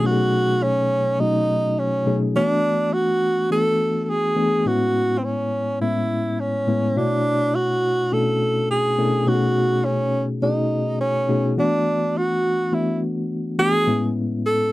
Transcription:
0.04 0.76 B2 medium
0.04 0.76 F#3 medium
0.04 0.76 A3 medium
0.04 0.76 C#4 medium
0.04 0.76 D#4 medium
0.04 0.64 F#4 loud
0.04 0.11 G4 medium
0.11 0.80 G#4 medium
0.63 1.22 C#4 loud
1.19 1.73 B2 medium
1.19 1.73 F#3 medium
1.19 1.73 A3 medium
1.19 1.74 C#4 medium
1.19 1.74 D#4 medium
1.19 1.80 D#4 loud
1.19 1.74 F#4 medium
1.79 2.19 C#4 medium
2.06 2.24 B2 medium
2.06 2.24 F#3 medium
2.06 2.24 A3 medium
2.06 2.25 C#4 medium
2.06 2.25 D#4 medium
2.06 2.25 G#4 medium
2.35 3.07 E3 medium
2.35 3.07 A3 medium
2.35 3.07 B3 medium
2.35 3.07 D4 medium
2.35 2.95 D4 loud
2.35 3.07 F#4 medium
2.94 3.51 F#4 loud
3.50 4.04 E3 medium
3.50 4.04 A3 medium
3.50 4.04 B3 medium
3.50 4.05 D4 medium
3.50 4.05 F#4 medium
3.50 4.04 A4 loud
4.04 4.11 A4 medium
4.10 4.69 G#4 loud
4.36 4.55 E3 medium
4.36 4.55 A3 medium
4.36 4.55 B3 medium
4.36 4.55 D4 medium
4.36 4.55 G#4 medium
4.65 5.37 A2 medium
4.65 5.37 G#3 medium
4.65 5.38 B3 medium
4.65 5.38 C#4 medium
4.65 5.38 E4 medium
4.65 5.20 F#4 loud
5.18 5.26 C4 medium
5.24 5.81 C#4 loud
5.81 6.35 A2 medium
5.81 6.35 G#3 medium
5.81 6.35 B3 medium
5.81 6.35 C#4 medium
5.81 6.42 E4 medium
5.81 6.35 E4 medium
6.40 6.99 C#4 medium
6.67 6.86 A2 medium
6.67 6.86 G#3 medium
6.67 6.86 B3 medium
6.67 6.86 C#4 medium
6.67 6.86 E4 medium
6.96 7.68 B2 medium
6.96 7.68 A3 medium
6.96 7.68 D4 medium
6.96 7.57 D4 loud
6.96 7.68 E4 medium
6.96 7.68 F#4 medium
6.96 7.68 C#5 medium
7.55 8.14 F#4 loud
8.12 8.65 B2 medium
8.12 8.66 A3 medium
8.12 8.66 C#4 medium
8.12 8.66 D4 medium
8.12 8.66 E4 medium
8.12 8.66 F#4 medium
8.12 8.70 A4 medium
8.71 9.29 G#4 loud
8.98 9.16 B2 medium
8.98 9.16 A3 medium
8.98 9.16 C#4 medium
8.98 9.16 D4 medium
8.98 9.17 E4 medium
8.98 9.17 A4 medium
9.27 9.98 B2 medium
9.27 9.98 A3 medium
9.27 9.98 C#4 medium
9.27 9.98 D#4 medium
9.27 9.99 F#4 medium
9.27 9.87 F#4 loud
9.27 9.34 G4 medium
9.34 10.02 G#4 medium
9.85 10.25 C#4 medium
10.42 10.96 B2 medium
10.42 10.96 A3 soft
10.42 10.96 C#4 medium
10.42 10.96 D#4 medium
10.42 10.96 F#4 medium
10.42 10.96 G#4 medium
11.01 11.54 C#4 medium
11.28 11.46 B2 medium
11.28 11.46 A3 medium
11.28 11.46 C#4 medium
11.28 11.46 D#4 medium
11.28 11.46 F#4 medium
11.28 11.46 G#4 medium
11.57 12.28 E3 medium
11.57 11.64 G#3 medium
11.57 12.29 B3 medium
11.57 12.29 D4 medium
11.57 12.19 D4 loud
11.57 12.29 F#4 medium
11.64 12.32 A3 medium
12.17 12.76 F#4 loud
12.72 13.25 E3 medium
12.72 13.25 A3 medium
12.72 13.25 B3 medium
12.72 13.26 D4 medium
12.72 13.02 E4 medium
12.72 13.26 F#4 medium
13.58 13.76 E3 medium
13.58 13.76 A3 medium
13.58 13.76 B3 medium
13.58 13.76 D4 medium
13.58 13.76 F#4 medium
13.58 14.12 G#4 loud
13.87 14.58 A2 medium
13.87 14.58 G#3 medium
13.87 14.58 B3 medium
13.87 14.58 C#4 medium
13.87 14.58 E4 medium
14.46 14.72 A4 loud

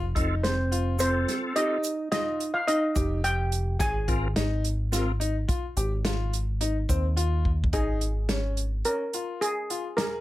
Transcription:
0.00 0.13 F1 medium
0.15 1.24 F1 medium
0.15 0.35 C4 medium
0.15 0.45 D#4 medium
0.15 0.35 F4 medium
0.15 0.35 A4 loud
0.15 kick medium
0.15 closed hi-hat medium
0.43 0.96 C4 medium
0.43 0.99 C5 medium
0.43 snare loud
0.43 closed hi-hat medium
0.72 1.01 F4 medium
0.72 closed hi-hat medium
0.99 1.78 C4 medium
0.99 1.52 C4 medium
0.99 1.78 F4 medium
0.99 1.78 A4 medium
0.99 1.52 C5 medium
0.99 closed hi-hat medium
0.99 shaker medium
1.28 snare soft
1.28 closed hi-hat medium
1.55 2.08 D#4 medium
1.55 1.85 G4 medium
1.55 2.10 D#5 medium
1.55 closed hi-hat medium
1.84 closed hi-hat medium
1.84 shaker soft
2.11 2.51 D#4 medium
2.11 2.41 F4 medium
2.11 2.55 D#5 medium
2.11 snare loud
2.11 closed hi-hat medium
2.40 closed hi-hat medium
2.54 2.59 F4 medium
2.54 2.60 F5 medium
2.67 2.82 D#4 medium
2.67 3.20 D#4 medium
2.67 3.26 D#5 medium
2.67 closed hi-hat medium
2.95 3.76 F1 medium
2.95 3.25 G4 medium
2.95 kick medium
2.95 closed hi-hat medium
2.95 shaker soft
3.24 3.76 G4 medium
3.24 3.82 G5 medium
3.24 closed hi-hat medium
3.52 closed hi-hat medium
3.79 4.06 G#1 loud
3.79 3.94 G#4 medium
3.79 4.33 G#4 medium
3.79 4.33 G#5 medium
3.79 kick loud
3.79 closed hi-hat medium
3.79 shaker soft
4.08 4.34 G#1 medium
4.08 4.28 C4 medium
4.08 4.23 F4 medium
4.08 4.28 F4 medium
4.08 4.28 A#4 medium
4.08 kick medium
4.08 closed hi-hat medium
4.36 5.45 G#1 medium
4.36 4.65 D#4 medium
4.36 snare medium
4.36 closed hi-hat medium
4.64 closed hi-hat medium
4.64 shaker soft
4.92 5.12 C4 medium
4.92 5.12 F4 medium
4.92 5.07 F4 medium
4.92 5.12 A#4 loud
4.92 snare soft
4.92 closed hi-hat medium
4.92 shaker medium
5.20 5.35 D#4 medium
5.20 closed hi-hat medium
5.48 5.63 F4 medium
5.48 kick medium
5.48 closed hi-hat medium
5.48 shaker soft
5.77 6.85 G#1 medium
5.77 5.91 G4 medium
5.77 closed hi-hat medium
5.77 shaker soft
6.05 6.34 F4 medium
6.05 snare loud
6.05 closed hi-hat medium
6.33 closed hi-hat medium
6.33 shaker soft
6.61 6.75 D#4 medium
6.61 closed hi-hat medium
6.89 7.69 D#2 medium
6.89 7.04 C4 medium
6.89 kick medium
6.89 closed hi-hat medium
6.89 shaker soft
7.16 7.46 F4 medium
7.16 closed hi-hat medium
7.16 shaker soft
7.45 kick medium
7.64 kick medium
7.73 8.82 G#1 medium
7.73 8.02 D#4 medium
7.73 8.89 G#4 medium
7.73 kick loud
7.73 closed hi-hat medium
8.01 closed hi-hat medium
8.29 8.59 C#4 medium
8.29 snare loud
8.29 closed hi-hat medium
8.57 closed hi-hat medium
8.85 9.00 C#4 medium
8.85 9.44 A#4 medium
8.85 closed hi-hat medium
9.13 9.43 F4 medium
9.13 closed hi-hat medium
9.41 10.00 G#4 medium
9.41 closed hi-hat medium
9.70 9.85 F4 medium
9.70 closed hi-hat medium
9.97 10.21 G#4 medium
9.97 10.21 A#4 medium
9.97 snare loud
9.97 closed hi-hat medium

